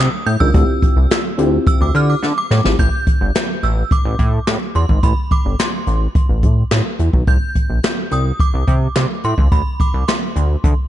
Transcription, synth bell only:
0.00 D#6
0.26 G6
0.40 E6
1.67 E6
1.82 D6
1.96 F6
2.10 D6
2.38 D6
2.79 G6
3.63 E6
3.92 D6
4.76 C6
5.03 B5
5.32 D6
5.60 C6
7.28 G6
8.12 D#6
8.40 D6
9.25 C6
9.52 B5
9.81 D6
10.08 C6

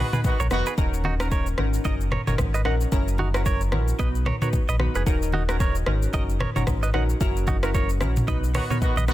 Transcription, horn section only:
Already playing: D#3 B3 F#4
0.24 D#3 B3 F#4
0.51 D#3 B3 F#4
8.55 D#3 B3 F#4
8.81 D#3 B3 F#4
9.08 D#3 B3 F#4

